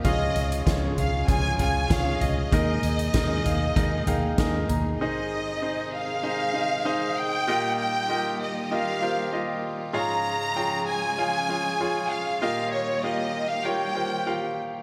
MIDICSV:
0, 0, Header, 1, 7, 480
1, 0, Start_track
1, 0, Key_signature, -4, "major"
1, 0, Tempo, 618557
1, 37, Time_signature, 4, 2, 24, 8
1, 11505, End_track
2, 0, Start_track
2, 0, Title_t, "Violin section"
2, 0, Program_c, 0, 48
2, 35, Note_on_c, 0, 75, 96
2, 485, Note_off_c, 0, 75, 0
2, 755, Note_on_c, 0, 77, 84
2, 979, Note_off_c, 0, 77, 0
2, 997, Note_on_c, 0, 80, 110
2, 1220, Note_off_c, 0, 80, 0
2, 1242, Note_on_c, 0, 80, 103
2, 1463, Note_off_c, 0, 80, 0
2, 1477, Note_on_c, 0, 77, 103
2, 1714, Note_on_c, 0, 75, 94
2, 1717, Note_off_c, 0, 77, 0
2, 3637, Note_off_c, 0, 75, 0
2, 3879, Note_on_c, 0, 75, 80
2, 4568, Note_off_c, 0, 75, 0
2, 4604, Note_on_c, 0, 77, 90
2, 5562, Note_off_c, 0, 77, 0
2, 5566, Note_on_c, 0, 79, 108
2, 6038, Note_off_c, 0, 79, 0
2, 6047, Note_on_c, 0, 79, 108
2, 6492, Note_off_c, 0, 79, 0
2, 6538, Note_on_c, 0, 75, 86
2, 6768, Note_off_c, 0, 75, 0
2, 6776, Note_on_c, 0, 77, 93
2, 7247, Note_off_c, 0, 77, 0
2, 7720, Note_on_c, 0, 82, 102
2, 8408, Note_off_c, 0, 82, 0
2, 8441, Note_on_c, 0, 80, 104
2, 9393, Note_on_c, 0, 77, 88
2, 9399, Note_off_c, 0, 80, 0
2, 9621, Note_off_c, 0, 77, 0
2, 9631, Note_on_c, 0, 77, 88
2, 9857, Note_off_c, 0, 77, 0
2, 9873, Note_on_c, 0, 73, 84
2, 10098, Note_off_c, 0, 73, 0
2, 10106, Note_on_c, 0, 75, 81
2, 10463, Note_on_c, 0, 77, 90
2, 10471, Note_off_c, 0, 75, 0
2, 10586, Note_on_c, 0, 79, 89
2, 10590, Note_off_c, 0, 77, 0
2, 11310, Note_off_c, 0, 79, 0
2, 11505, End_track
3, 0, Start_track
3, 0, Title_t, "Grand piano"
3, 0, Program_c, 1, 0
3, 0, Control_c, 1, 64, 127
3, 34, Note_on_c, 1, 65, 96
3, 35, Note_on_c, 1, 44, 57
3, 35, Note_on_c, 1, 68, 85
3, 35, Note_on_c, 1, 73, 82
3, 38, Note_on_c, 1, 77, 106
3, 46, Control_c, 1, 64, 0
3, 170, Control_c, 1, 64, 127
3, 465, Note_off_c, 1, 65, 0
3, 466, Note_off_c, 1, 68, 0
3, 466, Note_off_c, 1, 73, 0
3, 467, Note_off_c, 1, 77, 0
3, 510, Note_on_c, 1, 65, 66
3, 511, Note_on_c, 1, 68, 62
3, 513, Note_on_c, 1, 77, 77
3, 514, Note_on_c, 1, 73, 67
3, 725, Note_off_c, 1, 44, 0
3, 943, Note_off_c, 1, 65, 0
3, 944, Note_off_c, 1, 68, 0
3, 945, Note_off_c, 1, 73, 0
3, 945, Note_off_c, 1, 77, 0
3, 990, Note_on_c, 1, 68, 68
3, 991, Note_on_c, 1, 65, 72
3, 993, Note_on_c, 1, 73, 63
3, 996, Note_on_c, 1, 80, 81
3, 1209, Note_off_c, 1, 65, 0
3, 1209, Note_off_c, 1, 68, 0
3, 1210, Note_off_c, 1, 73, 0
3, 1212, Note_off_c, 1, 80, 0
3, 1233, Note_on_c, 1, 65, 66
3, 1236, Note_on_c, 1, 68, 59
3, 1236, Note_on_c, 1, 73, 61
3, 1240, Note_on_c, 1, 77, 77
3, 1450, Note_off_c, 1, 65, 0
3, 1452, Note_off_c, 1, 68, 0
3, 1452, Note_off_c, 1, 73, 0
3, 1454, Note_off_c, 1, 77, 0
3, 1473, Note_on_c, 1, 65, 71
3, 1474, Note_on_c, 1, 68, 66
3, 1479, Note_on_c, 1, 73, 74
3, 1482, Note_on_c, 1, 77, 81
3, 1905, Note_off_c, 1, 65, 0
3, 1906, Note_off_c, 1, 68, 0
3, 1908, Note_off_c, 1, 73, 0
3, 1910, Note_off_c, 1, 77, 0
3, 1959, Note_on_c, 1, 68, 80
3, 1962, Note_on_c, 1, 46, 61
3, 1962, Note_on_c, 1, 63, 85
3, 1963, Note_on_c, 1, 70, 87
3, 1966, Note_on_c, 1, 75, 96
3, 1967, Control_c, 1, 64, 0
3, 2105, Control_c, 1, 64, 127
3, 2388, Note_off_c, 1, 68, 0
3, 2389, Note_off_c, 1, 63, 0
3, 2390, Note_off_c, 1, 70, 0
3, 2391, Note_off_c, 1, 75, 0
3, 2442, Note_on_c, 1, 63, 83
3, 2443, Note_on_c, 1, 68, 80
3, 2444, Note_on_c, 1, 70, 70
3, 2444, Note_on_c, 1, 75, 92
3, 2649, Note_off_c, 1, 46, 0
3, 2682, Note_on_c, 1, 77, 75
3, 2870, Note_off_c, 1, 63, 0
3, 2870, Note_off_c, 1, 68, 0
3, 2871, Note_off_c, 1, 70, 0
3, 2871, Note_off_c, 1, 75, 0
3, 2904, Note_off_c, 1, 77, 0
3, 2920, Note_on_c, 1, 63, 85
3, 2922, Note_on_c, 1, 75, 92
3, 2924, Note_on_c, 1, 68, 76
3, 2927, Note_on_c, 1, 70, 72
3, 3134, Note_off_c, 1, 63, 0
3, 3136, Note_off_c, 1, 68, 0
3, 3137, Note_off_c, 1, 70, 0
3, 3137, Note_off_c, 1, 75, 0
3, 3160, Note_on_c, 1, 63, 77
3, 3160, Note_on_c, 1, 79, 64
3, 3164, Note_on_c, 1, 68, 69
3, 3165, Note_on_c, 1, 70, 65
3, 3165, Note_on_c, 1, 77, 83
3, 3374, Note_off_c, 1, 63, 0
3, 3376, Note_off_c, 1, 68, 0
3, 3376, Note_off_c, 1, 70, 0
3, 3377, Note_off_c, 1, 77, 0
3, 3382, Note_off_c, 1, 79, 0
3, 3406, Note_on_c, 1, 70, 77
3, 3408, Note_on_c, 1, 63, 81
3, 3408, Note_on_c, 1, 80, 71
3, 3409, Note_on_c, 1, 68, 71
3, 3412, Note_on_c, 1, 75, 92
3, 3627, Note_off_c, 1, 80, 0
3, 3645, Note_on_c, 1, 82, 70
3, 3832, Note_off_c, 1, 70, 0
3, 3833, Note_off_c, 1, 63, 0
3, 3833, Note_off_c, 1, 68, 0
3, 3835, Note_off_c, 1, 75, 0
3, 3865, Note_off_c, 1, 82, 0
3, 3888, Control_c, 1, 64, 0
3, 3889, Note_on_c, 1, 63, 91
3, 3889, Note_on_c, 1, 68, 85
3, 3890, Note_on_c, 1, 72, 78
3, 3891, Note_on_c, 1, 51, 60
3, 3892, Note_on_c, 1, 44, 61
3, 3894, Note_on_c, 1, 75, 96
3, 4002, Control_c, 1, 64, 127
3, 4313, Note_off_c, 1, 63, 0
3, 4314, Note_off_c, 1, 68, 0
3, 4314, Note_off_c, 1, 72, 0
3, 4316, Note_off_c, 1, 75, 0
3, 4361, Note_on_c, 1, 68, 62
3, 4362, Note_on_c, 1, 63, 73
3, 4364, Note_on_c, 1, 72, 62
3, 4364, Note_on_c, 1, 75, 77
3, 4574, Note_off_c, 1, 44, 0
3, 4574, Note_off_c, 1, 51, 0
3, 4789, Note_off_c, 1, 68, 0
3, 4790, Note_off_c, 1, 63, 0
3, 4791, Note_off_c, 1, 72, 0
3, 4791, Note_off_c, 1, 75, 0
3, 4836, Note_on_c, 1, 63, 73
3, 4838, Note_on_c, 1, 68, 64
3, 4839, Note_on_c, 1, 75, 81
3, 4840, Note_on_c, 1, 72, 66
3, 5052, Note_off_c, 1, 63, 0
3, 5053, Note_off_c, 1, 68, 0
3, 5054, Note_off_c, 1, 72, 0
3, 5054, Note_off_c, 1, 75, 0
3, 5074, Note_on_c, 1, 63, 64
3, 5076, Note_on_c, 1, 68, 57
3, 5081, Note_on_c, 1, 72, 58
3, 5081, Note_on_c, 1, 75, 77
3, 5291, Note_off_c, 1, 63, 0
3, 5292, Note_off_c, 1, 68, 0
3, 5295, Note_off_c, 1, 72, 0
3, 5295, Note_off_c, 1, 75, 0
3, 5317, Note_on_c, 1, 63, 87
3, 5321, Note_on_c, 1, 68, 83
3, 5322, Note_on_c, 1, 72, 81
3, 5323, Note_on_c, 1, 75, 100
3, 5748, Note_off_c, 1, 63, 0
3, 5750, Note_off_c, 1, 68, 0
3, 5750, Note_off_c, 1, 72, 0
3, 5751, Note_off_c, 1, 75, 0
3, 5800, Note_on_c, 1, 67, 83
3, 5802, Note_on_c, 1, 65, 97
3, 5803, Note_on_c, 1, 46, 62
3, 5807, Note_on_c, 1, 70, 81
3, 5807, Note_on_c, 1, 75, 97
3, 5808, Control_c, 1, 64, 0
3, 5941, Control_c, 1, 64, 127
3, 6229, Note_off_c, 1, 67, 0
3, 6230, Note_off_c, 1, 65, 0
3, 6232, Note_off_c, 1, 70, 0
3, 6232, Note_off_c, 1, 75, 0
3, 6277, Note_on_c, 1, 67, 66
3, 6280, Note_on_c, 1, 65, 66
3, 6281, Note_on_c, 1, 70, 67
3, 6281, Note_on_c, 1, 75, 79
3, 6490, Note_off_c, 1, 46, 0
3, 6708, Note_off_c, 1, 67, 0
3, 6709, Note_off_c, 1, 65, 0
3, 6710, Note_off_c, 1, 70, 0
3, 6710, Note_off_c, 1, 75, 0
3, 6761, Note_on_c, 1, 65, 70
3, 6761, Note_on_c, 1, 67, 60
3, 6764, Note_on_c, 1, 70, 68
3, 6764, Note_on_c, 1, 75, 75
3, 6975, Note_off_c, 1, 65, 0
3, 6975, Note_off_c, 1, 67, 0
3, 6976, Note_off_c, 1, 70, 0
3, 6976, Note_off_c, 1, 75, 0
3, 7000, Note_on_c, 1, 65, 70
3, 7003, Note_on_c, 1, 67, 65
3, 7005, Note_on_c, 1, 70, 62
3, 7007, Note_on_c, 1, 72, 73
3, 7214, Note_off_c, 1, 65, 0
3, 7216, Note_off_c, 1, 67, 0
3, 7217, Note_off_c, 1, 70, 0
3, 7218, Note_off_c, 1, 72, 0
3, 7237, Note_on_c, 1, 65, 76
3, 7239, Note_on_c, 1, 70, 69
3, 7240, Note_on_c, 1, 67, 69
3, 7243, Note_on_c, 1, 75, 77
3, 7668, Note_off_c, 1, 65, 0
3, 7668, Note_off_c, 1, 70, 0
3, 7669, Note_off_c, 1, 67, 0
3, 7670, Note_off_c, 1, 75, 0
3, 7708, Note_on_c, 1, 68, 85
3, 7709, Note_on_c, 1, 65, 94
3, 7712, Note_on_c, 1, 73, 82
3, 7713, Note_on_c, 1, 44, 63
3, 7715, Note_on_c, 1, 77, 100
3, 7729, Control_c, 1, 64, 0
3, 7860, Control_c, 1, 64, 127
3, 8143, Note_off_c, 1, 65, 0
3, 8143, Note_off_c, 1, 68, 0
3, 8145, Note_off_c, 1, 73, 0
3, 8146, Note_off_c, 1, 77, 0
3, 8195, Note_on_c, 1, 65, 74
3, 8195, Note_on_c, 1, 68, 66
3, 8197, Note_on_c, 1, 73, 67
3, 8198, Note_on_c, 1, 79, 85
3, 8404, Note_off_c, 1, 44, 0
3, 8626, Note_off_c, 1, 65, 0
3, 8626, Note_off_c, 1, 68, 0
3, 8627, Note_off_c, 1, 73, 0
3, 8627, Note_off_c, 1, 79, 0
3, 8674, Note_on_c, 1, 65, 69
3, 8678, Note_on_c, 1, 68, 64
3, 8678, Note_on_c, 1, 73, 70
3, 8682, Note_on_c, 1, 77, 80
3, 8891, Note_off_c, 1, 65, 0
3, 8892, Note_off_c, 1, 73, 0
3, 8893, Note_off_c, 1, 68, 0
3, 8895, Note_off_c, 1, 77, 0
3, 8916, Note_on_c, 1, 65, 65
3, 8919, Note_on_c, 1, 68, 60
3, 8919, Note_on_c, 1, 73, 58
3, 8925, Note_on_c, 1, 77, 73
3, 9132, Note_off_c, 1, 65, 0
3, 9133, Note_off_c, 1, 68, 0
3, 9133, Note_off_c, 1, 73, 0
3, 9136, Note_off_c, 1, 77, 0
3, 9162, Note_on_c, 1, 65, 89
3, 9162, Note_on_c, 1, 68, 80
3, 9162, Note_on_c, 1, 73, 75
3, 9164, Note_on_c, 1, 80, 90
3, 9589, Note_off_c, 1, 65, 0
3, 9589, Note_off_c, 1, 68, 0
3, 9589, Note_off_c, 1, 73, 0
3, 9590, Note_off_c, 1, 80, 0
3, 9636, Note_on_c, 1, 65, 96
3, 9636, Note_on_c, 1, 67, 80
3, 9637, Note_on_c, 1, 70, 78
3, 9638, Note_on_c, 1, 46, 58
3, 9642, Note_on_c, 1, 75, 101
3, 9646, Control_c, 1, 64, 0
3, 9785, Control_c, 1, 64, 127
3, 10066, Note_off_c, 1, 65, 0
3, 10066, Note_off_c, 1, 67, 0
3, 10067, Note_off_c, 1, 70, 0
3, 10069, Note_off_c, 1, 75, 0
3, 10115, Note_on_c, 1, 67, 69
3, 10119, Note_on_c, 1, 65, 69
3, 10122, Note_on_c, 1, 70, 70
3, 10122, Note_on_c, 1, 77, 81
3, 10326, Note_off_c, 1, 46, 0
3, 10545, Note_off_c, 1, 67, 0
3, 10547, Note_off_c, 1, 65, 0
3, 10548, Note_off_c, 1, 70, 0
3, 10548, Note_off_c, 1, 77, 0
3, 10589, Note_on_c, 1, 65, 73
3, 10590, Note_on_c, 1, 70, 62
3, 10593, Note_on_c, 1, 67, 65
3, 10595, Note_on_c, 1, 73, 82
3, 10807, Note_off_c, 1, 65, 0
3, 10808, Note_off_c, 1, 70, 0
3, 10809, Note_off_c, 1, 67, 0
3, 10810, Note_off_c, 1, 73, 0
3, 10827, Note_on_c, 1, 65, 63
3, 10827, Note_on_c, 1, 67, 56
3, 10831, Note_on_c, 1, 70, 59
3, 10832, Note_on_c, 1, 72, 70
3, 11046, Note_off_c, 1, 65, 0
3, 11046, Note_off_c, 1, 67, 0
3, 11048, Note_off_c, 1, 70, 0
3, 11049, Note_off_c, 1, 72, 0
3, 11068, Note_on_c, 1, 65, 68
3, 11073, Note_on_c, 1, 67, 67
3, 11073, Note_on_c, 1, 77, 83
3, 11074, Note_on_c, 1, 70, 61
3, 11501, Note_off_c, 1, 65, 0
3, 11503, Note_off_c, 1, 67, 0
3, 11503, Note_off_c, 1, 77, 0
3, 11504, Note_off_c, 1, 70, 0
3, 11505, End_track
4, 0, Start_track
4, 0, Title_t, "Clean electric guitar"
4, 0, Program_c, 2, 27
4, 39, Note_on_c, 2, 49, 84
4, 44, Note_on_c, 2, 53, 93
4, 47, Note_on_c, 2, 61, 91
4, 50, Note_on_c, 2, 65, 109
4, 53, Note_on_c, 2, 68, 98
4, 261, Note_off_c, 2, 68, 0
4, 270, Note_on_c, 2, 68, 57
4, 276, Note_off_c, 2, 65, 0
4, 278, Note_off_c, 2, 49, 0
4, 281, Note_off_c, 2, 53, 0
4, 282, Note_off_c, 2, 61, 0
4, 285, Note_on_c, 2, 65, 58
4, 295, Note_on_c, 2, 61, 45
4, 508, Note_on_c, 2, 53, 76
4, 509, Note_off_c, 2, 61, 0
4, 514, Note_off_c, 2, 68, 0
4, 515, Note_off_c, 2, 65, 0
4, 518, Note_on_c, 2, 61, 79
4, 524, Note_on_c, 2, 65, 72
4, 531, Note_on_c, 2, 68, 79
4, 737, Note_off_c, 2, 68, 0
4, 746, Note_on_c, 2, 68, 62
4, 750, Note_off_c, 2, 65, 0
4, 753, Note_off_c, 2, 53, 0
4, 758, Note_off_c, 2, 61, 0
4, 759, Note_on_c, 2, 65, 54
4, 769, Note_on_c, 2, 61, 54
4, 989, Note_off_c, 2, 61, 0
4, 989, Note_on_c, 2, 49, 95
4, 992, Note_off_c, 2, 68, 0
4, 992, Note_on_c, 2, 53, 91
4, 994, Note_off_c, 2, 65, 0
4, 998, Note_on_c, 2, 61, 95
4, 1003, Note_on_c, 2, 65, 106
4, 1005, Note_on_c, 2, 68, 109
4, 1216, Note_off_c, 2, 68, 0
4, 1225, Note_off_c, 2, 65, 0
4, 1225, Note_on_c, 2, 68, 59
4, 1233, Note_off_c, 2, 49, 0
4, 1235, Note_off_c, 2, 53, 0
4, 1235, Note_on_c, 2, 65, 62
4, 1238, Note_off_c, 2, 61, 0
4, 1246, Note_on_c, 2, 61, 55
4, 1467, Note_off_c, 2, 61, 0
4, 1467, Note_on_c, 2, 53, 60
4, 1471, Note_off_c, 2, 68, 0
4, 1476, Note_off_c, 2, 65, 0
4, 1476, Note_on_c, 2, 61, 72
4, 1484, Note_on_c, 2, 65, 70
4, 1489, Note_on_c, 2, 68, 71
4, 1702, Note_off_c, 2, 68, 0
4, 1711, Note_on_c, 2, 68, 63
4, 1712, Note_off_c, 2, 53, 0
4, 1714, Note_off_c, 2, 65, 0
4, 1717, Note_off_c, 2, 61, 0
4, 1723, Note_on_c, 2, 65, 60
4, 1734, Note_on_c, 2, 61, 55
4, 1947, Note_on_c, 2, 51, 85
4, 1951, Note_off_c, 2, 61, 0
4, 1952, Note_off_c, 2, 68, 0
4, 1952, Note_on_c, 2, 56, 102
4, 1955, Note_on_c, 2, 58, 88
4, 1957, Note_off_c, 2, 65, 0
4, 1960, Note_on_c, 2, 63, 95
4, 1962, Note_on_c, 2, 68, 110
4, 2182, Note_off_c, 2, 68, 0
4, 2191, Note_on_c, 2, 68, 58
4, 2192, Note_off_c, 2, 51, 0
4, 2194, Note_off_c, 2, 63, 0
4, 2195, Note_off_c, 2, 56, 0
4, 2196, Note_off_c, 2, 58, 0
4, 2203, Note_on_c, 2, 63, 55
4, 2214, Note_on_c, 2, 58, 49
4, 2427, Note_on_c, 2, 56, 67
4, 2431, Note_off_c, 2, 58, 0
4, 2434, Note_off_c, 2, 68, 0
4, 2437, Note_off_c, 2, 63, 0
4, 2440, Note_on_c, 2, 58, 65
4, 2447, Note_on_c, 2, 63, 70
4, 2452, Note_on_c, 2, 68, 76
4, 2667, Note_off_c, 2, 68, 0
4, 2673, Note_off_c, 2, 56, 0
4, 2676, Note_on_c, 2, 68, 69
4, 2679, Note_off_c, 2, 58, 0
4, 2679, Note_off_c, 2, 63, 0
4, 2688, Note_on_c, 2, 63, 55
4, 2700, Note_on_c, 2, 58, 53
4, 2916, Note_off_c, 2, 58, 0
4, 2917, Note_off_c, 2, 68, 0
4, 2919, Note_on_c, 2, 51, 91
4, 2920, Note_off_c, 2, 63, 0
4, 2923, Note_on_c, 2, 56, 85
4, 2925, Note_on_c, 2, 58, 92
4, 2929, Note_on_c, 2, 63, 99
4, 2931, Note_on_c, 2, 68, 96
4, 3148, Note_off_c, 2, 68, 0
4, 3157, Note_on_c, 2, 68, 67
4, 3158, Note_off_c, 2, 63, 0
4, 3159, Note_off_c, 2, 51, 0
4, 3160, Note_off_c, 2, 56, 0
4, 3162, Note_off_c, 2, 58, 0
4, 3168, Note_on_c, 2, 63, 54
4, 3181, Note_on_c, 2, 58, 52
4, 3394, Note_off_c, 2, 58, 0
4, 3395, Note_on_c, 2, 56, 58
4, 3398, Note_off_c, 2, 68, 0
4, 3403, Note_off_c, 2, 63, 0
4, 3403, Note_on_c, 2, 58, 60
4, 3412, Note_on_c, 2, 63, 63
4, 3418, Note_on_c, 2, 68, 68
4, 3624, Note_off_c, 2, 68, 0
4, 3633, Note_on_c, 2, 68, 55
4, 3636, Note_off_c, 2, 63, 0
4, 3637, Note_off_c, 2, 56, 0
4, 3641, Note_off_c, 2, 58, 0
4, 3645, Note_on_c, 2, 63, 53
4, 3657, Note_on_c, 2, 58, 48
4, 3876, Note_off_c, 2, 68, 0
4, 3882, Note_off_c, 2, 63, 0
4, 3888, Note_off_c, 2, 58, 0
4, 11505, End_track
5, 0, Start_track
5, 0, Title_t, "String section"
5, 0, Program_c, 3, 48
5, 0, Note_on_c, 3, 65, 64
5, 33, Note_on_c, 3, 68, 84
5, 34, Note_on_c, 3, 53, 70
5, 35, Note_on_c, 3, 49, 77
5, 35, Note_on_c, 3, 56, 73
5, 1924, Note_off_c, 3, 65, 0
5, 1937, Note_off_c, 3, 49, 0
5, 1937, Note_off_c, 3, 53, 0
5, 1937, Note_off_c, 3, 56, 0
5, 1961, Note_on_c, 3, 51, 66
5, 1962, Note_on_c, 3, 46, 75
5, 1962, Note_on_c, 3, 56, 71
5, 1963, Note_on_c, 3, 63, 70
5, 3845, Note_off_c, 3, 68, 0
5, 3861, Note_off_c, 3, 51, 0
5, 3861, Note_off_c, 3, 56, 0
5, 3862, Note_off_c, 3, 46, 0
5, 3862, Note_off_c, 3, 63, 0
5, 3877, Note_on_c, 3, 48, 74
5, 3877, Note_on_c, 3, 68, 86
5, 3878, Note_on_c, 3, 51, 73
5, 3879, Note_on_c, 3, 56, 71
5, 3885, Note_on_c, 3, 63, 69
5, 5779, Note_off_c, 3, 48, 0
5, 5779, Note_off_c, 3, 68, 0
5, 5780, Note_off_c, 3, 56, 0
5, 5783, Note_off_c, 3, 63, 0
5, 5800, Note_on_c, 3, 55, 74
5, 5800, Note_on_c, 3, 58, 76
5, 5802, Note_on_c, 3, 67, 88
5, 5803, Note_on_c, 3, 65, 73
5, 7687, Note_off_c, 3, 51, 0
5, 7700, Note_off_c, 3, 55, 0
5, 7700, Note_off_c, 3, 58, 0
5, 7701, Note_off_c, 3, 67, 0
5, 7720, Note_on_c, 3, 49, 72
5, 7721, Note_on_c, 3, 53, 72
5, 7721, Note_on_c, 3, 56, 74
5, 7723, Note_on_c, 3, 68, 84
5, 9619, Note_off_c, 3, 49, 0
5, 9619, Note_off_c, 3, 53, 0
5, 9619, Note_off_c, 3, 56, 0
5, 9621, Note_off_c, 3, 68, 0
5, 9637, Note_on_c, 3, 67, 84
5, 9638, Note_on_c, 3, 51, 72
5, 9639, Note_on_c, 3, 55, 70
5, 9640, Note_on_c, 3, 58, 67
5, 11505, Note_off_c, 3, 51, 0
5, 11505, Note_off_c, 3, 55, 0
5, 11505, Note_off_c, 3, 58, 0
5, 11505, Note_off_c, 3, 65, 0
5, 11505, Note_off_c, 3, 67, 0
5, 11505, End_track
6, 0, Start_track
6, 0, Title_t, "Fingered electric bass"
6, 0, Program_c, 4, 33
6, 34, Note_on_c, 4, 37, 104
6, 232, Note_off_c, 4, 37, 0
6, 275, Note_on_c, 4, 37, 101
6, 473, Note_off_c, 4, 37, 0
6, 518, Note_on_c, 4, 37, 102
6, 714, Note_off_c, 4, 37, 0
6, 748, Note_on_c, 4, 37, 104
6, 949, Note_off_c, 4, 37, 0
6, 998, Note_on_c, 4, 37, 97
6, 1194, Note_off_c, 4, 37, 0
6, 1228, Note_on_c, 4, 37, 92
6, 1429, Note_off_c, 4, 37, 0
6, 1478, Note_on_c, 4, 37, 93
6, 1674, Note_off_c, 4, 37, 0
6, 1713, Note_on_c, 4, 37, 92
6, 1912, Note_off_c, 4, 37, 0
6, 1960, Note_on_c, 4, 39, 96
6, 2156, Note_off_c, 4, 39, 0
6, 2196, Note_on_c, 4, 39, 97
6, 2394, Note_off_c, 4, 39, 0
6, 2437, Note_on_c, 4, 39, 109
6, 2634, Note_off_c, 4, 39, 0
6, 2678, Note_on_c, 4, 39, 90
6, 2875, Note_off_c, 4, 39, 0
6, 2919, Note_on_c, 4, 39, 92
6, 3115, Note_off_c, 4, 39, 0
6, 3156, Note_on_c, 4, 39, 90
6, 3354, Note_off_c, 4, 39, 0
6, 3398, Note_on_c, 4, 39, 90
6, 3595, Note_off_c, 4, 39, 0
6, 3639, Note_on_c, 4, 39, 92
6, 3835, Note_off_c, 4, 39, 0
6, 11505, End_track
7, 0, Start_track
7, 0, Title_t, "Drums"
7, 37, Note_on_c, 9, 36, 104
7, 37, Note_on_c, 9, 42, 93
7, 114, Note_off_c, 9, 36, 0
7, 114, Note_off_c, 9, 42, 0
7, 278, Note_on_c, 9, 42, 80
7, 355, Note_off_c, 9, 42, 0
7, 404, Note_on_c, 9, 42, 58
7, 482, Note_off_c, 9, 42, 0
7, 517, Note_on_c, 9, 36, 107
7, 519, Note_on_c, 9, 42, 94
7, 522, Note_on_c, 9, 38, 114
7, 595, Note_off_c, 9, 36, 0
7, 597, Note_off_c, 9, 42, 0
7, 600, Note_off_c, 9, 38, 0
7, 760, Note_on_c, 9, 42, 67
7, 761, Note_on_c, 9, 43, 67
7, 838, Note_off_c, 9, 42, 0
7, 839, Note_off_c, 9, 43, 0
7, 996, Note_on_c, 9, 36, 105
7, 997, Note_on_c, 9, 42, 80
7, 1074, Note_off_c, 9, 36, 0
7, 1074, Note_off_c, 9, 42, 0
7, 1236, Note_on_c, 9, 42, 66
7, 1238, Note_on_c, 9, 43, 58
7, 1314, Note_off_c, 9, 42, 0
7, 1315, Note_off_c, 9, 43, 0
7, 1477, Note_on_c, 9, 36, 107
7, 1479, Note_on_c, 9, 38, 117
7, 1479, Note_on_c, 9, 42, 94
7, 1555, Note_off_c, 9, 36, 0
7, 1557, Note_off_c, 9, 38, 0
7, 1557, Note_off_c, 9, 42, 0
7, 1718, Note_on_c, 9, 42, 74
7, 1719, Note_on_c, 9, 43, 66
7, 1796, Note_off_c, 9, 42, 0
7, 1796, Note_off_c, 9, 43, 0
7, 1959, Note_on_c, 9, 36, 104
7, 1960, Note_on_c, 9, 42, 87
7, 2036, Note_off_c, 9, 36, 0
7, 2037, Note_off_c, 9, 42, 0
7, 2197, Note_on_c, 9, 42, 81
7, 2275, Note_off_c, 9, 42, 0
7, 2321, Note_on_c, 9, 42, 57
7, 2398, Note_off_c, 9, 42, 0
7, 2436, Note_on_c, 9, 42, 90
7, 2438, Note_on_c, 9, 36, 114
7, 2439, Note_on_c, 9, 38, 116
7, 2513, Note_off_c, 9, 42, 0
7, 2516, Note_off_c, 9, 36, 0
7, 2516, Note_off_c, 9, 38, 0
7, 2683, Note_on_c, 9, 42, 67
7, 2684, Note_on_c, 9, 43, 64
7, 2761, Note_off_c, 9, 42, 0
7, 2761, Note_off_c, 9, 43, 0
7, 2920, Note_on_c, 9, 36, 105
7, 2923, Note_on_c, 9, 42, 84
7, 2998, Note_off_c, 9, 36, 0
7, 3001, Note_off_c, 9, 42, 0
7, 3160, Note_on_c, 9, 42, 66
7, 3161, Note_on_c, 9, 43, 58
7, 3237, Note_off_c, 9, 42, 0
7, 3239, Note_off_c, 9, 43, 0
7, 3400, Note_on_c, 9, 38, 113
7, 3400, Note_on_c, 9, 42, 95
7, 3401, Note_on_c, 9, 36, 105
7, 3478, Note_off_c, 9, 36, 0
7, 3478, Note_off_c, 9, 38, 0
7, 3478, Note_off_c, 9, 42, 0
7, 3643, Note_on_c, 9, 42, 70
7, 3643, Note_on_c, 9, 43, 63
7, 3721, Note_off_c, 9, 42, 0
7, 3721, Note_off_c, 9, 43, 0
7, 11505, End_track
0, 0, End_of_file